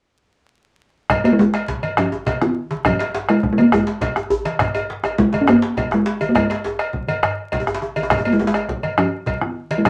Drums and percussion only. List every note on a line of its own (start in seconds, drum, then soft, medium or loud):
1.10 bombo rim medium
1.10 bombo low medium
1.10 cowbell medium
1.10 djembe slap soft
1.10 low conga medium
1.10 djembe bass medium
1.25 cowbell soft
1.25 djembe slap medium
1.25 djembe tone soft
1.39 djembe slap medium
1.39 high conga soft
1.39 djembe tone medium
1.54 bombo rim medium
1.54 cowbell soft
1.54 djembe slap medium
1.54 high conga soft
1.68 bombo rim soft
1.68 bombo low medium
1.68 djembe slap medium
1.68 high conga soft
1.68 low conga medium
1.82 bombo rim soft
1.82 cowbell soft
1.82 high conga medium
1.82 djembe tone medium
1.97 bombo rim medium
1.97 cowbell soft
1.97 djembe slap soft
1.97 djembe slap medium
1.97 high conga soft
1.97 djembe bass medium
2.12 high conga soft
2.12 djembe tone medium
2.26 bombo low medium
2.26 cowbell soft
2.26 djembe slap medium
2.26 low conga medium
2.41 bombo rim medium
2.41 djembe slap medium
2.41 djembe tone medium
2.71 djembe slap medium
2.71 high conga medium
2.85 bombo rim medium
2.85 bombo low medium
2.85 cowbell medium
2.85 djembe slap soft
2.85 djembe tone medium
2.85 low conga medium
2.85 djembe bass medium
2.99 cowbell soft
2.99 djembe slap medium
3.14 djembe slap medium
3.14 high conga soft
3.29 bombo rim medium
3.29 cowbell soft
3.29 high conga soft
3.43 bombo rim soft
3.43 bombo low medium
3.43 high conga soft
3.43 low conga medium
3.57 bombo rim soft
3.57 cowbell soft
3.57 high conga medium
3.57 djembe tone medium
3.72 bombo rim medium
3.72 cowbell soft
3.72 djembe slap soft
3.72 high conga soft
3.72 djembe bass medium
3.87 djembe slap medium
3.87 high conga soft
4.01 bombo low medium
4.01 cowbell soft
4.01 djembe slap medium
4.01 low conga medium
4.16 bombo rim medium
4.16 djembe tone medium
4.30 djembe bass loud
4.45 cowbell soft
4.45 djembe slap medium
4.45 high conga medium
4.59 bombo rim medium
4.59 bombo low loud
4.59 cowbell soft
4.59 djembe slap medium
4.59 djembe slap soft
4.59 djembe bass medium
4.59 low conga medium
4.75 cowbell soft
4.75 djembe tone medium
4.75 djembe tone soft
4.89 djembe slap medium
4.89 high conga soft
5.03 bombo rim medium
5.03 cowbell soft
5.03 djembe tone medium
5.03 high conga soft
5.18 bombo rim soft
5.18 bombo low loud
5.18 djembe slap medium
5.18 high conga soft
5.18 low conga medium
5.32 bombo rim soft
5.32 cowbell soft
5.32 djembe tone medium
5.32 high conga medium
5.47 bombo rim loud
5.47 cowbell soft
5.47 djembe slap soft
5.47 djembe tone medium
5.47 djembe bass medium
5.62 djembe slap medium
5.62 high conga soft
5.77 bombo low medium
5.77 cowbell soft
5.77 djembe slap medium
5.77 djembe tone medium
5.77 low conga medium
5.91 bombo rim medium
5.91 djembe tone medium
6.06 djembe slap medium
6.21 cowbell soft
6.21 djembe tone medium
6.21 high conga medium
6.35 bombo rim medium
6.35 bombo low medium
6.35 cowbell medium
6.35 djembe tone medium
6.35 low conga medium
6.35 djembe bass medium
6.50 cowbell soft
6.50 djembe slap soft
6.50 djembe slap medium
6.50 djembe tone medium
6.64 djembe slap medium
6.64 djembe tone medium
6.79 bombo rim medium
6.79 cowbell soft
6.93 bombo low medium
6.93 low conga medium
7.08 cowbell soft
7.08 high conga medium
7.08 djembe tone medium
7.23 bombo rim medium
7.23 cowbell medium
7.23 high conga soft
7.23 djembe bass medium
7.52 bombo low medium
7.52 cowbell soft
7.52 djembe slap medium
7.52 low conga medium
7.60 djembe tone medium
7.67 bombo rim medium
7.67 djembe slap soft
7.67 djembe tone medium
7.75 djembe slap medium
7.81 bombo rim soft
7.81 djembe slap soft
7.81 high conga soft
7.81 djembe tone medium
7.96 cowbell soft
7.96 djembe slap soft
7.96 djembe tone medium
7.96 high conga medium
8.03 djembe tone medium
8.10 bombo rim medium
8.10 bombo low medium
8.10 cowbell medium
8.10 djembe slap soft
8.10 djembe slap medium
8.10 djembe bass medium
8.10 low conga medium
8.18 djembe tone medium
8.25 cowbell soft
8.25 djembe tone soft
8.33 djembe tone medium
8.39 djembe slap medium
8.39 djembe tone medium
8.39 high conga soft
8.47 djembe slap medium
8.54 bombo rim medium
8.54 cowbell soft
8.54 djembe tone medium
8.54 high conga soft
8.68 bombo rim soft
8.68 bombo low medium
8.68 high conga soft
8.68 low conga medium
8.83 bombo rim soft
8.83 cowbell soft
8.83 high conga soft
8.83 djembe tone medium
8.97 bombo rim medium
8.97 cowbell soft
8.97 djembe slap soft
8.97 high conga soft
8.97 djembe bass medium
9.12 high conga soft
9.26 bombo low medium
9.26 cowbell soft
9.26 djembe slap medium
9.26 low conga medium
9.41 bombo rim medium
9.41 djembe tone soft
9.71 cowbell soft
9.71 djembe slap medium
9.71 high conga medium
9.85 bombo rim medium
9.85 bombo low medium
9.85 cowbell soft
9.85 djembe slap soft
9.85 djembe slap medium
9.85 low conga medium
9.85 djembe bass medium